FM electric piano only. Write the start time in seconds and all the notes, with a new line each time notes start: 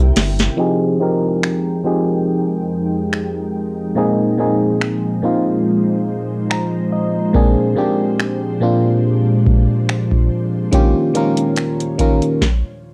Already playing: G3 A#3 E4 G4 E5
0.57 F3 C4 D#4 G4 G#4
1.00 F3 C4 D#4 G4 A#4
1.84 F3 C4 D#4 G4 G#4
3.95 A#2 A#3 C4 D#4 G#4
4.37 A#2 A#3 C4 D#4 G#4
5.22 A#2 A#3 C4 D#4 F4
6.50 A#5
6.92 D#5
7.33 A#2 A#3 C4 D4 G#4
7.76 A#2 A#3 C4 D4 G4
8.60 A#2 A#3 C4 D4 F4
10.71 D#3 A#3 C#4 F4 G4
11.14 D#3 A#3 C#4 F4 A#4
11.98 D#3 A#3 C#4 F4 A#4